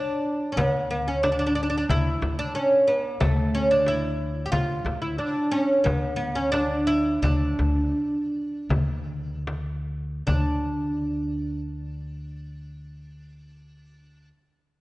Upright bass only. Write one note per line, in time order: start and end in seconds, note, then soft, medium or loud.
0.56 1.84 D2 medium
1.89 2.19 D2 medium
2.22 2.52 D2 medium
3.21 4.48 D2 medium
4.52 4.82 D2 medium
4.85 5.15 D2 medium
5.85 7.19 D2 medium
7.22 7.55 D2 medium
7.59 7.92 D2 medium
8.69 10.23 D2 medium
10.27 14.29 D2 medium